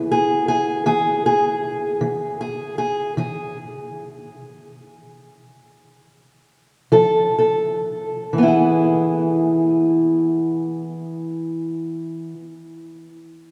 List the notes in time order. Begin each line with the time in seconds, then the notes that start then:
Already playing: E3 B3 E4 G#4 E5
0.12 G#4
0.48 G#4
0.86 E3 G#4
1.26 G#4
2.01 E3
2.41 G#4
2.78 G#4
3.17 E3 G#4
6.92 F3 A4
7.39 A4
8.33 E3
8.38 B3
8.43 E4
8.48 G#4